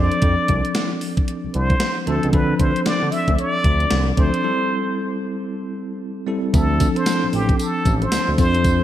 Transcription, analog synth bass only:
0.22 0.35 F2 loud
0.49 0.61 C2 medium
1.44 1.48 C2 soft
1.55 1.75 C2 loud
2.07 2.20 D2 loud
2.24 2.32 C#2 loud
2.33 2.54 D2 loud
2.60 2.72 D2 medium
2.87 2.93 D3 soft
3.02 3.10 D3 medium
3.28 3.36 D2 medium
3.65 3.85 D2 loud
3.92 4.12 C2 loud
4.18 4.30 D2 medium
6.54 6.87 D2 loud
7.23 7.27 A1 soft
7.33 7.54 A1 medium
7.86 8.06 A1 loud
8.12 8.19 D2 soft
8.28 8.36 D2 medium
8.38 8.80 F2 medium

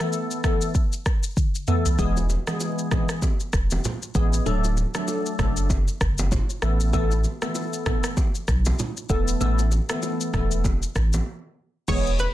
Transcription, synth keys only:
0.00 0.41 E3 medium
0.00 0.41 A3 medium
0.00 0.41 B3 medium
0.00 0.41 A4 medium
0.44 0.73 E3 medium
0.44 0.73 A3 medium
0.44 0.73 B3 medium
0.44 0.73 A4 medium
1.67 1.96 E3 medium
1.67 1.97 A3 medium
1.67 1.97 B3 medium
1.67 1.97 A4 medium
1.99 2.19 E3 medium
1.99 2.20 G#3 medium
1.99 2.20 B3 medium
1.99 2.20 G#4 medium
2.47 2.88 E3 medium
2.47 2.88 G#3 medium
2.47 2.88 B3 medium
2.47 2.89 G#4 medium
2.91 3.20 E3 medium
2.91 3.20 G#3 medium
2.91 3.20 B3 medium
2.91 3.20 G#4 medium
4.15 4.44 E3 medium
4.15 4.44 G#3 medium
4.15 4.44 B3 medium
4.15 4.44 G#4 medium
4.46 4.67 F#3 medium
4.46 4.67 A3 medium
4.46 4.67 D4 medium
4.46 4.67 A4 loud
4.95 5.36 F#3 medium
4.95 5.36 A3 medium
4.95 5.36 D4 medium
4.95 5.36 A4 medium
5.39 5.68 F#3 medium
5.39 5.68 A3 medium
5.39 5.68 D4 medium
5.39 5.68 A4 medium
6.62 6.91 E3 medium
6.62 6.91 A3 medium
6.62 6.91 B3 medium
6.62 6.92 A4 medium
6.93 7.14 E3 medium
6.93 7.14 A3 medium
6.93 7.14 B3 medium
6.93 7.14 A4 loud
7.42 7.83 E3 medium
7.42 7.83 A3 medium
7.42 7.83 B3 medium
7.42 7.83 A4 medium
7.86 8.15 E3 medium
7.86 8.15 A3 medium
7.86 8.15 B3 medium
7.86 8.15 A4 medium
9.09 9.39 E3 medium
9.09 9.39 A3 medium
9.09 9.39 B3 medium
9.09 9.39 A4 medium
9.41 9.62 E3 medium
9.41 9.62 A3 medium
9.41 9.62 B3 medium
9.41 9.62 A4 loud
9.89 10.30 E3 medium
9.89 10.30 A3 medium
9.89 10.31 B3 medium
9.89 10.31 A4 medium
10.33 10.62 E3 medium
10.33 10.62 A3 medium
10.33 10.63 B3 medium
10.33 10.63 A4 medium
11.88 12.09 E3 medium
11.88 12.09 G#3 medium
11.88 12.09 B3 medium
11.88 12.09 G#4 loud

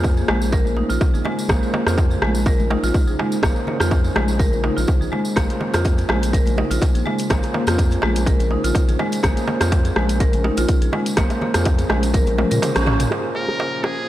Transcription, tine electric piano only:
0.00 1.47 A#3 medium
0.00 1.47 C#4 medium
0.00 1.47 F4 medium
0.00 1.47 G#4 medium
0.00 1.47 C5 medium
1.49 1.84 A#3 medium
1.49 1.84 C#4 medium
1.49 1.84 F4 medium
1.49 1.84 G#4 medium
1.49 1.84 C5 loud
1.87 3.40 A#3 medium
1.87 3.40 C#4 medium
1.87 3.40 F4 medium
1.87 3.40 G#4 medium
1.87 3.40 C5 medium
3.43 3.77 A#3 medium
3.43 3.77 C#4 medium
3.43 3.77 F4 medium
3.43 3.77 G#4 medium
3.43 3.77 C5 loud
3.80 5.34 A#3 medium
3.80 5.34 C#4 medium
3.80 5.34 F4 medium
3.80 5.34 G#4 medium
3.80 5.34 C5 medium
5.37 5.71 A#3 medium
5.37 5.71 C#4 medium
5.37 5.71 F4 medium
5.37 5.71 G#4 medium
5.37 5.71 C5 loud
5.74 7.27 A#3 medium
5.74 7.27 C#4 medium
5.74 7.27 F4 medium
5.74 7.27 G#4 medium
5.74 7.28 C5 medium
7.30 7.64 A#3 medium
7.30 7.64 C#4 medium
7.30 7.64 F4 medium
7.30 7.64 G#4 medium
7.30 7.64 C5 loud
7.67 9.21 A#3 medium
7.67 9.21 C#4 medium
7.67 9.21 F4 medium
7.67 9.21 G#4 medium
7.67 9.21 C5 medium
9.23 9.58 A#3 medium
9.23 9.58 C#4 medium
9.23 9.58 F4 medium
9.23 9.58 G#4 medium
9.23 9.58 C5 loud
9.61 11.15 A#3 medium
9.61 11.15 C#4 medium
9.61 11.15 F4 medium
9.61 11.15 G#4 medium
9.61 11.15 C5 medium
11.17 11.51 A#3 medium
11.17 11.51 C#4 medium
11.17 11.51 F4 medium
11.17 11.51 G#4 medium
11.17 11.51 C5 loud
11.54 12.60 A#3 medium
11.54 12.60 C#4 medium
11.54 12.60 F4 medium
11.54 12.60 G#4 medium
11.54 12.60 C5 medium
12.63 12.84 A#3 medium
12.63 12.84 C#4 medium
12.63 12.84 F4 medium
12.63 12.84 G#4 medium
12.63 12.84 C5 medium
12.87 13.08 A#3 medium
12.87 13.08 C#4 medium
12.87 13.08 F4 medium
12.87 13.08 G#4 medium
12.87 13.08 C#5 medium
13.11 13.45 A#3 medium
13.11 13.45 C#4 medium
13.11 13.45 F4 medium
13.11 13.45 G#4 medium
13.11 13.45 C5 medium
13.48 14.09 A#3 medium
13.48 14.09 C#4 medium
13.48 14.09 F4 medium
13.48 14.09 G#4 medium
13.48 14.09 C5 medium

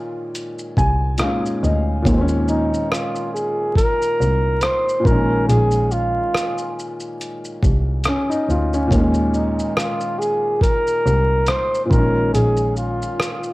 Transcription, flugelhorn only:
2.49 2.93 D#4 medium
2.91 3.33 F4 medium
3.34 3.73 G#4 medium
3.77 4.64 A#4 loud
4.62 5.07 C5 loud
5.06 5.48 A#4 loud
5.48 5.93 G#4 medium
5.92 6.77 F4 medium
9.35 9.79 D#4 medium
9.77 10.20 F4 medium
10.19 10.61 G#4 medium
10.62 11.50 A#4 loud
11.48 11.85 C5 loud
11.85 11.92 C5 medium
11.91 12.33 A#4 loud
12.34 12.73 G#4 medium
12.78 13.53 F4 medium

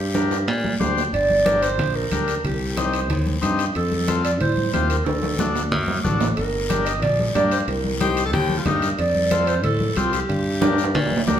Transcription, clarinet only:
0.00 0.81 G4 medium
1.13 1.63 D5 loud
1.62 1.97 C5 loud
1.96 2.44 A#4 medium
2.45 2.79 G4 medium
2.78 3.27 C5 medium
3.76 4.22 A4 loud
4.24 4.32 D5 loud
4.41 4.71 C5 loud
4.74 4.89 C5 loud
4.89 5.07 A#4 medium
5.05 5.55 A4 medium
6.36 6.87 A#4 medium
6.86 7.01 D#5 loud
7.02 7.33 D5 loud
7.35 7.43 D5 loud
7.52 7.59 C5 medium
7.68 8.14 A#4 medium
8.99 9.49 D5 loud
9.47 9.63 C5 loud
9.63 9.99 A4 loud
9.97 10.15 F4 medium
10.13 11.28 G4 medium

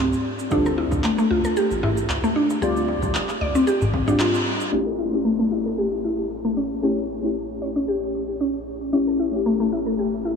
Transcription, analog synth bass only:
0.52 0.87 D2 loud
0.92 1.01 D2 medium
1.31 1.42 D2 medium
1.71 2.05 A1 medium
2.09 2.20 D2 loud
2.62 2.97 D2 loud
3.03 3.12 D2 loud
3.41 3.52 D2 medium
3.82 4.16 A1 medium
4.73 10.36 A1 medium

